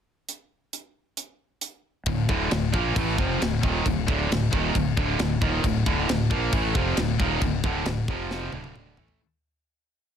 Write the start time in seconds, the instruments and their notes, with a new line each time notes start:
0.29 closed hi-hat
0.73 closed hi-hat
1.17 closed hi-hat
1.61 closed hi-hat
2.06 fingered electric bass D1, distorted electric guitar D2 A2, kick, crash
2.29 fingered electric bass D1, distorted electric guitar D2 A2 D3, kick
2.51 fingered electric bass D1, distorted electric guitar D2 A2, snare, crash
2.72 fingered electric bass A#1, distorted electric guitar A#2 F3 A#3, kick
2.96 fingered electric bass A1, distorted electric guitar A2 E3 A3, kick, crash
3.18 fingered electric bass F1, distorted electric guitar F2 C3 F3, kick
3.42 fingered electric bass D1, distorted electric guitar D2 A2, snare, crash
3.63 fingered electric bass D#1, distorted electric guitar D#2 A#2 D#3, kick
3.84 fingered electric bass D1, distorted electric guitar D2 A2, kick, crash
4.07 fingered electric bass D1, distorted electric guitar D2 A2 D3, kick
4.29 fingered electric bass D1, distorted electric guitar D2 A2, snare, crash
4.51 fingered electric bass D#1, distorted electric guitar D#2 A#2 D#3, kick
4.74 fingered electric bass D1, distorted electric guitar D2 A2, kick, crash
4.96 fingered electric bass D1, distorted electric guitar D2 A2 D3, kick
5.19 fingered electric bass D1, distorted electric guitar D2 A2, snare, crash
5.42 fingered electric bass D#1, distorted electric guitar D#2 A#2 D#3, kick
5.64 fingered electric bass D1, distorted electric guitar D2 A2, kick, crash
5.86 fingered electric bass D1, distorted electric guitar D2 A2 D3, kick
6.09 fingered electric bass D1, distorted electric guitar D2 A2, snare, crash
6.30 fingered electric bass A#1, distorted electric guitar A#2 F3 A#3, kick
6.52 fingered electric bass A1, distorted electric guitar A2 E3 A3, kick, crash
6.75 fingered electric bass F1, distorted electric guitar F2 C3 F3, kick
6.97 fingered electric bass D1, distorted electric guitar D2 A2, snare, crash
7.20 fingered electric bass D#1, distorted electric guitar D#2 A#2 D#3, kick
7.41 fingered electric bass D1, distorted electric guitar D2 A2, kick, crash
7.64 fingered electric bass D1, distorted electric guitar D2 A2 D3, kick
7.86 fingered electric bass D1, distorted electric guitar D2 A2, snare, crash
8.08 fingered electric bass F1, distorted electric guitar F2 C3 F3, kick
8.31 snare
8.52 fingered electric bass D1, distorted electric guitar D2 A2 D3, high tom
8.64 high tom
8.76 mid tom
8.97 fingered electric bass A1, distorted electric guitar A2 E3 A3, floor tom
9.08 floor tom